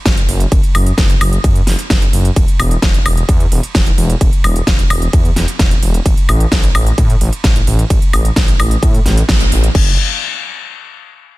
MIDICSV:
0, 0, Header, 1, 3, 480
1, 0, Start_track
1, 0, Tempo, 461538
1, 540, Time_signature, 4, 2, 24, 8
1, 11834, End_track
2, 0, Start_track
2, 0, Title_t, "Detuned saw bass"
2, 0, Program_c, 0, 39
2, 59, Note_on_c, 0, 30, 99
2, 236, Note_off_c, 0, 30, 0
2, 299, Note_on_c, 0, 30, 96
2, 476, Note_off_c, 0, 30, 0
2, 539, Note_on_c, 0, 30, 104
2, 627, Note_off_c, 0, 30, 0
2, 779, Note_on_c, 0, 30, 101
2, 956, Note_off_c, 0, 30, 0
2, 1018, Note_on_c, 0, 30, 100
2, 1195, Note_off_c, 0, 30, 0
2, 1258, Note_on_c, 0, 30, 84
2, 1435, Note_off_c, 0, 30, 0
2, 1498, Note_on_c, 0, 42, 98
2, 1676, Note_off_c, 0, 42, 0
2, 1737, Note_on_c, 0, 30, 82
2, 1827, Note_off_c, 0, 30, 0
2, 1978, Note_on_c, 0, 30, 98
2, 2155, Note_off_c, 0, 30, 0
2, 2218, Note_on_c, 0, 30, 98
2, 2395, Note_off_c, 0, 30, 0
2, 2458, Note_on_c, 0, 28, 101
2, 2547, Note_off_c, 0, 28, 0
2, 2699, Note_on_c, 0, 28, 99
2, 2876, Note_off_c, 0, 28, 0
2, 2939, Note_on_c, 0, 28, 101
2, 3116, Note_off_c, 0, 28, 0
2, 3179, Note_on_c, 0, 28, 83
2, 3356, Note_off_c, 0, 28, 0
2, 3418, Note_on_c, 0, 40, 101
2, 3595, Note_off_c, 0, 40, 0
2, 3660, Note_on_c, 0, 28, 85
2, 3748, Note_off_c, 0, 28, 0
2, 3898, Note_on_c, 0, 28, 94
2, 4075, Note_off_c, 0, 28, 0
2, 4140, Note_on_c, 0, 28, 98
2, 4316, Note_off_c, 0, 28, 0
2, 4379, Note_on_c, 0, 28, 103
2, 4467, Note_off_c, 0, 28, 0
2, 4621, Note_on_c, 0, 28, 98
2, 4797, Note_off_c, 0, 28, 0
2, 4858, Note_on_c, 0, 28, 100
2, 5035, Note_off_c, 0, 28, 0
2, 5101, Note_on_c, 0, 28, 81
2, 5277, Note_off_c, 0, 28, 0
2, 5339, Note_on_c, 0, 40, 98
2, 5516, Note_off_c, 0, 40, 0
2, 5581, Note_on_c, 0, 28, 85
2, 5668, Note_off_c, 0, 28, 0
2, 5819, Note_on_c, 0, 28, 96
2, 5996, Note_off_c, 0, 28, 0
2, 6061, Note_on_c, 0, 28, 97
2, 6237, Note_off_c, 0, 28, 0
2, 6299, Note_on_c, 0, 33, 105
2, 6387, Note_off_c, 0, 33, 0
2, 6540, Note_on_c, 0, 33, 99
2, 6716, Note_off_c, 0, 33, 0
2, 6779, Note_on_c, 0, 33, 100
2, 6956, Note_off_c, 0, 33, 0
2, 7019, Note_on_c, 0, 33, 85
2, 7196, Note_off_c, 0, 33, 0
2, 7259, Note_on_c, 0, 45, 97
2, 7436, Note_off_c, 0, 45, 0
2, 7500, Note_on_c, 0, 33, 80
2, 7588, Note_off_c, 0, 33, 0
2, 7738, Note_on_c, 0, 33, 97
2, 7915, Note_off_c, 0, 33, 0
2, 7979, Note_on_c, 0, 33, 97
2, 8156, Note_off_c, 0, 33, 0
2, 8219, Note_on_c, 0, 33, 101
2, 8307, Note_off_c, 0, 33, 0
2, 8459, Note_on_c, 0, 33, 101
2, 8636, Note_off_c, 0, 33, 0
2, 8699, Note_on_c, 0, 33, 99
2, 8876, Note_off_c, 0, 33, 0
2, 8940, Note_on_c, 0, 33, 83
2, 9116, Note_off_c, 0, 33, 0
2, 9178, Note_on_c, 0, 45, 99
2, 9356, Note_off_c, 0, 45, 0
2, 9420, Note_on_c, 0, 33, 100
2, 9596, Note_off_c, 0, 33, 0
2, 9660, Note_on_c, 0, 33, 93
2, 9836, Note_off_c, 0, 33, 0
2, 9901, Note_on_c, 0, 33, 94
2, 10077, Note_off_c, 0, 33, 0
2, 10139, Note_on_c, 0, 30, 103
2, 10362, Note_off_c, 0, 30, 0
2, 11834, End_track
3, 0, Start_track
3, 0, Title_t, "Drums"
3, 58, Note_on_c, 9, 38, 123
3, 59, Note_on_c, 9, 36, 127
3, 60, Note_on_c, 9, 42, 66
3, 60, Note_on_c, 9, 51, 66
3, 162, Note_off_c, 9, 38, 0
3, 163, Note_off_c, 9, 36, 0
3, 164, Note_off_c, 9, 42, 0
3, 164, Note_off_c, 9, 51, 0
3, 179, Note_on_c, 9, 42, 39
3, 283, Note_off_c, 9, 42, 0
3, 299, Note_on_c, 9, 46, 114
3, 403, Note_off_c, 9, 46, 0
3, 419, Note_on_c, 9, 42, 40
3, 523, Note_off_c, 9, 42, 0
3, 539, Note_on_c, 9, 36, 125
3, 539, Note_on_c, 9, 42, 66
3, 539, Note_on_c, 9, 51, 67
3, 643, Note_off_c, 9, 36, 0
3, 643, Note_off_c, 9, 42, 0
3, 643, Note_off_c, 9, 51, 0
3, 659, Note_on_c, 9, 42, 40
3, 763, Note_off_c, 9, 42, 0
3, 778, Note_on_c, 9, 46, 109
3, 778, Note_on_c, 9, 76, 68
3, 882, Note_off_c, 9, 46, 0
3, 882, Note_off_c, 9, 76, 0
3, 899, Note_on_c, 9, 42, 39
3, 1003, Note_off_c, 9, 42, 0
3, 1016, Note_on_c, 9, 38, 125
3, 1018, Note_on_c, 9, 36, 127
3, 1018, Note_on_c, 9, 42, 66
3, 1018, Note_on_c, 9, 51, 68
3, 1120, Note_off_c, 9, 38, 0
3, 1122, Note_off_c, 9, 36, 0
3, 1122, Note_off_c, 9, 42, 0
3, 1122, Note_off_c, 9, 51, 0
3, 1139, Note_on_c, 9, 42, 39
3, 1243, Note_off_c, 9, 42, 0
3, 1259, Note_on_c, 9, 46, 112
3, 1259, Note_on_c, 9, 76, 82
3, 1363, Note_off_c, 9, 46, 0
3, 1363, Note_off_c, 9, 76, 0
3, 1379, Note_on_c, 9, 42, 39
3, 1483, Note_off_c, 9, 42, 0
3, 1498, Note_on_c, 9, 36, 127
3, 1498, Note_on_c, 9, 42, 66
3, 1498, Note_on_c, 9, 51, 70
3, 1602, Note_off_c, 9, 36, 0
3, 1602, Note_off_c, 9, 42, 0
3, 1602, Note_off_c, 9, 51, 0
3, 1617, Note_on_c, 9, 42, 38
3, 1721, Note_off_c, 9, 42, 0
3, 1736, Note_on_c, 9, 38, 60
3, 1738, Note_on_c, 9, 46, 111
3, 1840, Note_off_c, 9, 38, 0
3, 1842, Note_off_c, 9, 46, 0
3, 1859, Note_on_c, 9, 42, 41
3, 1963, Note_off_c, 9, 42, 0
3, 1977, Note_on_c, 9, 38, 116
3, 1978, Note_on_c, 9, 36, 127
3, 1979, Note_on_c, 9, 42, 64
3, 1979, Note_on_c, 9, 51, 67
3, 2081, Note_off_c, 9, 38, 0
3, 2082, Note_off_c, 9, 36, 0
3, 2083, Note_off_c, 9, 42, 0
3, 2083, Note_off_c, 9, 51, 0
3, 2099, Note_on_c, 9, 42, 39
3, 2203, Note_off_c, 9, 42, 0
3, 2218, Note_on_c, 9, 46, 112
3, 2322, Note_off_c, 9, 46, 0
3, 2339, Note_on_c, 9, 42, 39
3, 2443, Note_off_c, 9, 42, 0
3, 2458, Note_on_c, 9, 36, 119
3, 2459, Note_on_c, 9, 42, 65
3, 2459, Note_on_c, 9, 51, 71
3, 2562, Note_off_c, 9, 36, 0
3, 2563, Note_off_c, 9, 42, 0
3, 2563, Note_off_c, 9, 51, 0
3, 2579, Note_on_c, 9, 42, 39
3, 2683, Note_off_c, 9, 42, 0
3, 2699, Note_on_c, 9, 46, 106
3, 2699, Note_on_c, 9, 76, 71
3, 2803, Note_off_c, 9, 46, 0
3, 2803, Note_off_c, 9, 76, 0
3, 2819, Note_on_c, 9, 42, 39
3, 2923, Note_off_c, 9, 42, 0
3, 2936, Note_on_c, 9, 38, 122
3, 2938, Note_on_c, 9, 36, 120
3, 2938, Note_on_c, 9, 42, 67
3, 2938, Note_on_c, 9, 51, 71
3, 3040, Note_off_c, 9, 38, 0
3, 3042, Note_off_c, 9, 36, 0
3, 3042, Note_off_c, 9, 42, 0
3, 3042, Note_off_c, 9, 51, 0
3, 3059, Note_on_c, 9, 42, 39
3, 3163, Note_off_c, 9, 42, 0
3, 3179, Note_on_c, 9, 46, 109
3, 3179, Note_on_c, 9, 76, 84
3, 3283, Note_off_c, 9, 46, 0
3, 3283, Note_off_c, 9, 76, 0
3, 3299, Note_on_c, 9, 42, 39
3, 3403, Note_off_c, 9, 42, 0
3, 3418, Note_on_c, 9, 36, 125
3, 3419, Note_on_c, 9, 42, 67
3, 3419, Note_on_c, 9, 51, 71
3, 3522, Note_off_c, 9, 36, 0
3, 3523, Note_off_c, 9, 42, 0
3, 3523, Note_off_c, 9, 51, 0
3, 3539, Note_on_c, 9, 42, 38
3, 3643, Note_off_c, 9, 42, 0
3, 3659, Note_on_c, 9, 46, 109
3, 3763, Note_off_c, 9, 46, 0
3, 3779, Note_on_c, 9, 42, 40
3, 3883, Note_off_c, 9, 42, 0
3, 3898, Note_on_c, 9, 38, 117
3, 3899, Note_on_c, 9, 36, 126
3, 3900, Note_on_c, 9, 42, 64
3, 3900, Note_on_c, 9, 51, 70
3, 4002, Note_off_c, 9, 38, 0
3, 4003, Note_off_c, 9, 36, 0
3, 4004, Note_off_c, 9, 42, 0
3, 4004, Note_off_c, 9, 51, 0
3, 4020, Note_on_c, 9, 42, 39
3, 4124, Note_off_c, 9, 42, 0
3, 4140, Note_on_c, 9, 46, 106
3, 4244, Note_off_c, 9, 46, 0
3, 4260, Note_on_c, 9, 42, 38
3, 4364, Note_off_c, 9, 42, 0
3, 4379, Note_on_c, 9, 36, 118
3, 4379, Note_on_c, 9, 42, 68
3, 4379, Note_on_c, 9, 51, 71
3, 4483, Note_off_c, 9, 36, 0
3, 4483, Note_off_c, 9, 42, 0
3, 4483, Note_off_c, 9, 51, 0
3, 4500, Note_on_c, 9, 42, 40
3, 4604, Note_off_c, 9, 42, 0
3, 4620, Note_on_c, 9, 46, 102
3, 4620, Note_on_c, 9, 76, 70
3, 4724, Note_off_c, 9, 46, 0
3, 4724, Note_off_c, 9, 76, 0
3, 4740, Note_on_c, 9, 42, 40
3, 4844, Note_off_c, 9, 42, 0
3, 4857, Note_on_c, 9, 38, 119
3, 4859, Note_on_c, 9, 36, 118
3, 4859, Note_on_c, 9, 42, 69
3, 4859, Note_on_c, 9, 51, 74
3, 4961, Note_off_c, 9, 38, 0
3, 4963, Note_off_c, 9, 36, 0
3, 4963, Note_off_c, 9, 42, 0
3, 4963, Note_off_c, 9, 51, 0
3, 4979, Note_on_c, 9, 42, 40
3, 5083, Note_off_c, 9, 42, 0
3, 5099, Note_on_c, 9, 46, 104
3, 5099, Note_on_c, 9, 76, 85
3, 5203, Note_off_c, 9, 46, 0
3, 5203, Note_off_c, 9, 76, 0
3, 5220, Note_on_c, 9, 42, 41
3, 5324, Note_off_c, 9, 42, 0
3, 5339, Note_on_c, 9, 36, 120
3, 5339, Note_on_c, 9, 42, 68
3, 5339, Note_on_c, 9, 51, 71
3, 5443, Note_off_c, 9, 36, 0
3, 5443, Note_off_c, 9, 42, 0
3, 5443, Note_off_c, 9, 51, 0
3, 5459, Note_on_c, 9, 42, 39
3, 5563, Note_off_c, 9, 42, 0
3, 5577, Note_on_c, 9, 38, 58
3, 5579, Note_on_c, 9, 46, 102
3, 5681, Note_off_c, 9, 38, 0
3, 5683, Note_off_c, 9, 46, 0
3, 5699, Note_on_c, 9, 42, 44
3, 5803, Note_off_c, 9, 42, 0
3, 5817, Note_on_c, 9, 38, 113
3, 5819, Note_on_c, 9, 36, 123
3, 5819, Note_on_c, 9, 42, 67
3, 5819, Note_on_c, 9, 51, 71
3, 5921, Note_off_c, 9, 38, 0
3, 5923, Note_off_c, 9, 36, 0
3, 5923, Note_off_c, 9, 42, 0
3, 5923, Note_off_c, 9, 51, 0
3, 5939, Note_on_c, 9, 42, 41
3, 6043, Note_off_c, 9, 42, 0
3, 6059, Note_on_c, 9, 46, 106
3, 6163, Note_off_c, 9, 46, 0
3, 6180, Note_on_c, 9, 42, 42
3, 6284, Note_off_c, 9, 42, 0
3, 6298, Note_on_c, 9, 36, 109
3, 6300, Note_on_c, 9, 42, 72
3, 6300, Note_on_c, 9, 51, 74
3, 6402, Note_off_c, 9, 36, 0
3, 6404, Note_off_c, 9, 42, 0
3, 6404, Note_off_c, 9, 51, 0
3, 6419, Note_on_c, 9, 42, 42
3, 6523, Note_off_c, 9, 42, 0
3, 6539, Note_on_c, 9, 46, 105
3, 6539, Note_on_c, 9, 76, 70
3, 6643, Note_off_c, 9, 46, 0
3, 6643, Note_off_c, 9, 76, 0
3, 6660, Note_on_c, 9, 42, 41
3, 6764, Note_off_c, 9, 42, 0
3, 6777, Note_on_c, 9, 38, 120
3, 6779, Note_on_c, 9, 36, 118
3, 6779, Note_on_c, 9, 42, 72
3, 6779, Note_on_c, 9, 51, 75
3, 6881, Note_off_c, 9, 38, 0
3, 6883, Note_off_c, 9, 36, 0
3, 6883, Note_off_c, 9, 42, 0
3, 6883, Note_off_c, 9, 51, 0
3, 6899, Note_on_c, 9, 42, 42
3, 7003, Note_off_c, 9, 42, 0
3, 7019, Note_on_c, 9, 46, 103
3, 7019, Note_on_c, 9, 76, 86
3, 7123, Note_off_c, 9, 46, 0
3, 7123, Note_off_c, 9, 76, 0
3, 7139, Note_on_c, 9, 42, 43
3, 7243, Note_off_c, 9, 42, 0
3, 7259, Note_on_c, 9, 36, 116
3, 7259, Note_on_c, 9, 42, 72
3, 7259, Note_on_c, 9, 51, 71
3, 7363, Note_off_c, 9, 36, 0
3, 7363, Note_off_c, 9, 42, 0
3, 7363, Note_off_c, 9, 51, 0
3, 7379, Note_on_c, 9, 42, 42
3, 7483, Note_off_c, 9, 42, 0
3, 7499, Note_on_c, 9, 46, 106
3, 7603, Note_off_c, 9, 46, 0
3, 7619, Note_on_c, 9, 42, 42
3, 7723, Note_off_c, 9, 42, 0
3, 7737, Note_on_c, 9, 38, 113
3, 7739, Note_on_c, 9, 36, 119
3, 7739, Note_on_c, 9, 42, 71
3, 7739, Note_on_c, 9, 51, 71
3, 7841, Note_off_c, 9, 38, 0
3, 7843, Note_off_c, 9, 36, 0
3, 7843, Note_off_c, 9, 42, 0
3, 7843, Note_off_c, 9, 51, 0
3, 7860, Note_on_c, 9, 42, 42
3, 7964, Note_off_c, 9, 42, 0
3, 7980, Note_on_c, 9, 46, 104
3, 8084, Note_off_c, 9, 46, 0
3, 8101, Note_on_c, 9, 42, 42
3, 8205, Note_off_c, 9, 42, 0
3, 8219, Note_on_c, 9, 36, 116
3, 8219, Note_on_c, 9, 42, 71
3, 8219, Note_on_c, 9, 51, 72
3, 8323, Note_off_c, 9, 36, 0
3, 8323, Note_off_c, 9, 42, 0
3, 8323, Note_off_c, 9, 51, 0
3, 8340, Note_on_c, 9, 42, 44
3, 8444, Note_off_c, 9, 42, 0
3, 8459, Note_on_c, 9, 46, 107
3, 8459, Note_on_c, 9, 76, 64
3, 8563, Note_off_c, 9, 46, 0
3, 8563, Note_off_c, 9, 76, 0
3, 8579, Note_on_c, 9, 42, 42
3, 8683, Note_off_c, 9, 42, 0
3, 8697, Note_on_c, 9, 38, 127
3, 8699, Note_on_c, 9, 36, 120
3, 8699, Note_on_c, 9, 42, 74
3, 8699, Note_on_c, 9, 51, 75
3, 8801, Note_off_c, 9, 38, 0
3, 8803, Note_off_c, 9, 36, 0
3, 8803, Note_off_c, 9, 42, 0
3, 8803, Note_off_c, 9, 51, 0
3, 8820, Note_on_c, 9, 42, 44
3, 8924, Note_off_c, 9, 42, 0
3, 8940, Note_on_c, 9, 46, 105
3, 8940, Note_on_c, 9, 76, 81
3, 9044, Note_off_c, 9, 46, 0
3, 9044, Note_off_c, 9, 76, 0
3, 9059, Note_on_c, 9, 42, 43
3, 9163, Note_off_c, 9, 42, 0
3, 9179, Note_on_c, 9, 36, 121
3, 9181, Note_on_c, 9, 42, 72
3, 9181, Note_on_c, 9, 51, 70
3, 9283, Note_off_c, 9, 36, 0
3, 9285, Note_off_c, 9, 42, 0
3, 9285, Note_off_c, 9, 51, 0
3, 9301, Note_on_c, 9, 42, 41
3, 9405, Note_off_c, 9, 42, 0
3, 9418, Note_on_c, 9, 38, 64
3, 9421, Note_on_c, 9, 46, 99
3, 9522, Note_off_c, 9, 38, 0
3, 9525, Note_off_c, 9, 46, 0
3, 9541, Note_on_c, 9, 42, 44
3, 9645, Note_off_c, 9, 42, 0
3, 9658, Note_on_c, 9, 38, 120
3, 9659, Note_on_c, 9, 36, 119
3, 9660, Note_on_c, 9, 42, 68
3, 9660, Note_on_c, 9, 51, 72
3, 9762, Note_off_c, 9, 38, 0
3, 9763, Note_off_c, 9, 36, 0
3, 9764, Note_off_c, 9, 42, 0
3, 9764, Note_off_c, 9, 51, 0
3, 9781, Note_on_c, 9, 42, 43
3, 9885, Note_off_c, 9, 42, 0
3, 9901, Note_on_c, 9, 46, 105
3, 10005, Note_off_c, 9, 46, 0
3, 10021, Note_on_c, 9, 42, 43
3, 10125, Note_off_c, 9, 42, 0
3, 10139, Note_on_c, 9, 36, 111
3, 10141, Note_on_c, 9, 49, 91
3, 10243, Note_off_c, 9, 36, 0
3, 10245, Note_off_c, 9, 49, 0
3, 11834, End_track
0, 0, End_of_file